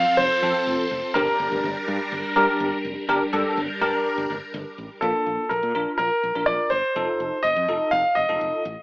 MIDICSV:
0, 0, Header, 1, 5, 480
1, 0, Start_track
1, 0, Key_signature, -2, "major"
1, 0, Tempo, 483871
1, 1144, Time_signature, 4, 2, 24, 8
1, 8755, End_track
2, 0, Start_track
2, 0, Title_t, "Grand piano"
2, 0, Program_c, 0, 0
2, 0, Note_on_c, 0, 77, 105
2, 171, Note_on_c, 0, 72, 99
2, 184, Note_off_c, 0, 77, 0
2, 1132, Note_on_c, 0, 70, 84
2, 1166, Note_off_c, 0, 72, 0
2, 2538, Note_off_c, 0, 70, 0
2, 4969, Note_on_c, 0, 69, 75
2, 5450, Note_on_c, 0, 70, 79
2, 5471, Note_off_c, 0, 69, 0
2, 5914, Note_off_c, 0, 70, 0
2, 5928, Note_on_c, 0, 70, 82
2, 6409, Note_on_c, 0, 74, 86
2, 6431, Note_off_c, 0, 70, 0
2, 6639, Note_off_c, 0, 74, 0
2, 6646, Note_on_c, 0, 72, 88
2, 7367, Note_on_c, 0, 75, 93
2, 7397, Note_off_c, 0, 72, 0
2, 7821, Note_off_c, 0, 75, 0
2, 7848, Note_on_c, 0, 77, 102
2, 8087, Note_on_c, 0, 75, 88
2, 8103, Note_off_c, 0, 77, 0
2, 8541, Note_off_c, 0, 75, 0
2, 8755, End_track
3, 0, Start_track
3, 0, Title_t, "Tine electric piano"
3, 0, Program_c, 1, 4
3, 424, Note_on_c, 1, 60, 75
3, 424, Note_on_c, 1, 65, 70
3, 424, Note_on_c, 1, 69, 82
3, 822, Note_off_c, 1, 60, 0
3, 822, Note_off_c, 1, 65, 0
3, 822, Note_off_c, 1, 69, 0
3, 1143, Note_on_c, 1, 62, 77
3, 1143, Note_on_c, 1, 70, 84
3, 1144, Note_on_c, 1, 67, 74
3, 1674, Note_off_c, 1, 62, 0
3, 1675, Note_off_c, 1, 67, 0
3, 1675, Note_off_c, 1, 70, 0
3, 2341, Note_on_c, 1, 67, 84
3, 2341, Note_on_c, 1, 70, 101
3, 2342, Note_on_c, 1, 62, 88
3, 2741, Note_off_c, 1, 62, 0
3, 2741, Note_off_c, 1, 67, 0
3, 2741, Note_off_c, 1, 70, 0
3, 3063, Note_on_c, 1, 62, 89
3, 3063, Note_on_c, 1, 67, 83
3, 3063, Note_on_c, 1, 70, 96
3, 3196, Note_off_c, 1, 62, 0
3, 3196, Note_off_c, 1, 67, 0
3, 3196, Note_off_c, 1, 70, 0
3, 3302, Note_on_c, 1, 69, 99
3, 3303, Note_on_c, 1, 62, 92
3, 3303, Note_on_c, 1, 67, 81
3, 3569, Note_off_c, 1, 62, 0
3, 3569, Note_off_c, 1, 67, 0
3, 3569, Note_off_c, 1, 69, 0
3, 3784, Note_on_c, 1, 62, 89
3, 3785, Note_on_c, 1, 67, 79
3, 3785, Note_on_c, 1, 70, 94
3, 4315, Note_off_c, 1, 62, 0
3, 4315, Note_off_c, 1, 67, 0
3, 4315, Note_off_c, 1, 70, 0
3, 4983, Note_on_c, 1, 62, 70
3, 4983, Note_on_c, 1, 65, 65
3, 4984, Note_on_c, 1, 58, 77
3, 5382, Note_off_c, 1, 58, 0
3, 5382, Note_off_c, 1, 62, 0
3, 5382, Note_off_c, 1, 65, 0
3, 5704, Note_on_c, 1, 62, 70
3, 5704, Note_on_c, 1, 65, 62
3, 5704, Note_on_c, 1, 70, 75
3, 6036, Note_off_c, 1, 62, 0
3, 6036, Note_off_c, 1, 65, 0
3, 6036, Note_off_c, 1, 70, 0
3, 6302, Note_on_c, 1, 62, 63
3, 6302, Note_on_c, 1, 70, 73
3, 6303, Note_on_c, 1, 65, 59
3, 6635, Note_off_c, 1, 62, 0
3, 6635, Note_off_c, 1, 65, 0
3, 6635, Note_off_c, 1, 70, 0
3, 6905, Note_on_c, 1, 63, 72
3, 6905, Note_on_c, 1, 69, 78
3, 6906, Note_on_c, 1, 65, 64
3, 7303, Note_off_c, 1, 63, 0
3, 7303, Note_off_c, 1, 65, 0
3, 7303, Note_off_c, 1, 69, 0
3, 7623, Note_on_c, 1, 69, 75
3, 7624, Note_on_c, 1, 63, 70
3, 7624, Note_on_c, 1, 65, 63
3, 7955, Note_off_c, 1, 69, 0
3, 7956, Note_off_c, 1, 63, 0
3, 7956, Note_off_c, 1, 65, 0
3, 8223, Note_on_c, 1, 65, 61
3, 8223, Note_on_c, 1, 69, 70
3, 8224, Note_on_c, 1, 63, 62
3, 8555, Note_off_c, 1, 65, 0
3, 8555, Note_off_c, 1, 69, 0
3, 8556, Note_off_c, 1, 63, 0
3, 8755, End_track
4, 0, Start_track
4, 0, Title_t, "String machine"
4, 0, Program_c, 2, 50
4, 0, Note_on_c, 2, 53, 83
4, 0, Note_on_c, 2, 60, 76
4, 0, Note_on_c, 2, 69, 92
4, 1123, Note_off_c, 2, 60, 0
4, 1124, Note_off_c, 2, 53, 0
4, 1124, Note_off_c, 2, 69, 0
4, 1141, Note_on_c, 2, 70, 91
4, 1142, Note_on_c, 2, 55, 83
4, 1142, Note_on_c, 2, 62, 78
4, 3043, Note_off_c, 2, 55, 0
4, 3043, Note_off_c, 2, 62, 0
4, 3043, Note_off_c, 2, 70, 0
4, 3061, Note_on_c, 2, 55, 79
4, 3061, Note_on_c, 2, 62, 74
4, 3062, Note_on_c, 2, 70, 90
4, 4963, Note_off_c, 2, 55, 0
4, 4963, Note_off_c, 2, 62, 0
4, 4964, Note_off_c, 2, 70, 0
4, 8755, End_track
5, 0, Start_track
5, 0, Title_t, "Fretless electric bass"
5, 0, Program_c, 3, 35
5, 183, Note_on_c, 3, 29, 106
5, 274, Note_off_c, 3, 29, 0
5, 421, Note_on_c, 3, 41, 96
5, 512, Note_off_c, 3, 41, 0
5, 662, Note_on_c, 3, 29, 102
5, 753, Note_off_c, 3, 29, 0
5, 903, Note_on_c, 3, 29, 93
5, 994, Note_off_c, 3, 29, 0
5, 1143, Note_on_c, 3, 31, 110
5, 1234, Note_off_c, 3, 31, 0
5, 1383, Note_on_c, 3, 31, 99
5, 1474, Note_off_c, 3, 31, 0
5, 1504, Note_on_c, 3, 31, 91
5, 1595, Note_off_c, 3, 31, 0
5, 1623, Note_on_c, 3, 31, 99
5, 1713, Note_off_c, 3, 31, 0
5, 1864, Note_on_c, 3, 43, 109
5, 1955, Note_off_c, 3, 43, 0
5, 2103, Note_on_c, 3, 31, 97
5, 2194, Note_off_c, 3, 31, 0
5, 2343, Note_on_c, 3, 43, 100
5, 2434, Note_off_c, 3, 43, 0
5, 2581, Note_on_c, 3, 31, 104
5, 2673, Note_off_c, 3, 31, 0
5, 2823, Note_on_c, 3, 29, 88
5, 2914, Note_off_c, 3, 29, 0
5, 3063, Note_on_c, 3, 31, 102
5, 3154, Note_off_c, 3, 31, 0
5, 3303, Note_on_c, 3, 43, 101
5, 3394, Note_off_c, 3, 43, 0
5, 3544, Note_on_c, 3, 31, 103
5, 3634, Note_off_c, 3, 31, 0
5, 3783, Note_on_c, 3, 43, 94
5, 3873, Note_off_c, 3, 43, 0
5, 4143, Note_on_c, 3, 31, 92
5, 4233, Note_off_c, 3, 31, 0
5, 4263, Note_on_c, 3, 31, 95
5, 4354, Note_off_c, 3, 31, 0
5, 4502, Note_on_c, 3, 31, 104
5, 4593, Note_off_c, 3, 31, 0
5, 4742, Note_on_c, 3, 33, 84
5, 4833, Note_off_c, 3, 33, 0
5, 4980, Note_on_c, 3, 34, 101
5, 5072, Note_off_c, 3, 34, 0
5, 5222, Note_on_c, 3, 34, 80
5, 5313, Note_off_c, 3, 34, 0
5, 5462, Note_on_c, 3, 34, 99
5, 5553, Note_off_c, 3, 34, 0
5, 5582, Note_on_c, 3, 46, 94
5, 5673, Note_off_c, 3, 46, 0
5, 5703, Note_on_c, 3, 34, 91
5, 5793, Note_off_c, 3, 34, 0
5, 5942, Note_on_c, 3, 34, 96
5, 6033, Note_off_c, 3, 34, 0
5, 6184, Note_on_c, 3, 34, 81
5, 6274, Note_off_c, 3, 34, 0
5, 6302, Note_on_c, 3, 34, 86
5, 6393, Note_off_c, 3, 34, 0
5, 6422, Note_on_c, 3, 34, 91
5, 6513, Note_off_c, 3, 34, 0
5, 6663, Note_on_c, 3, 31, 91
5, 6754, Note_off_c, 3, 31, 0
5, 6902, Note_on_c, 3, 29, 102
5, 6993, Note_off_c, 3, 29, 0
5, 7142, Note_on_c, 3, 29, 86
5, 7233, Note_off_c, 3, 29, 0
5, 7382, Note_on_c, 3, 29, 95
5, 7473, Note_off_c, 3, 29, 0
5, 7502, Note_on_c, 3, 41, 92
5, 7593, Note_off_c, 3, 41, 0
5, 7622, Note_on_c, 3, 29, 93
5, 7713, Note_off_c, 3, 29, 0
5, 7862, Note_on_c, 3, 29, 95
5, 7953, Note_off_c, 3, 29, 0
5, 8103, Note_on_c, 3, 29, 87
5, 8194, Note_off_c, 3, 29, 0
5, 8222, Note_on_c, 3, 29, 82
5, 8313, Note_off_c, 3, 29, 0
5, 8342, Note_on_c, 3, 29, 90
5, 8433, Note_off_c, 3, 29, 0
5, 8583, Note_on_c, 3, 33, 90
5, 8674, Note_off_c, 3, 33, 0
5, 8755, End_track
0, 0, End_of_file